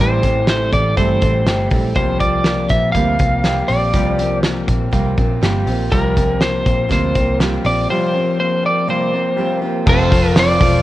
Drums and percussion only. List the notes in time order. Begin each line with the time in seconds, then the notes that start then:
0.23 kick, closed hi-hat
0.47 snare, closed hi-hat
0.73 kick, closed hi-hat
0.97 kick, closed hi-hat
1.22 kick, closed hi-hat
1.46 snare, closed hi-hat
1.70 kick, open hi-hat
1.95 kick, closed hi-hat
2.20 kick, closed hi-hat
2.44 snare, closed hi-hat
2.69 kick, closed hi-hat
2.95 kick, closed hi-hat
3.19 kick, closed hi-hat
3.44 snare, closed hi-hat
3.68 open hi-hat
3.94 kick, closed hi-hat
4.19 closed hi-hat
4.43 snare, closed hi-hat
4.68 kick, closed hi-hat
4.93 kick, closed hi-hat
5.17 kick, closed hi-hat
5.43 snare, closed hi-hat
5.67 open hi-hat
5.92 kick, closed hi-hat
6.17 kick, closed hi-hat
6.41 snare, closed hi-hat
6.66 kick, closed hi-hat
6.91 kick, snare, closed hi-hat
7.15 kick, closed hi-hat
7.40 snare, closed hi-hat
7.65 open hi-hat
9.87 kick, crash
10.12 kick, hi-hat pedal, open hi-hat
10.36 snare, hi-hat pedal, open hi-hat
10.60 kick, hi-hat pedal, open hi-hat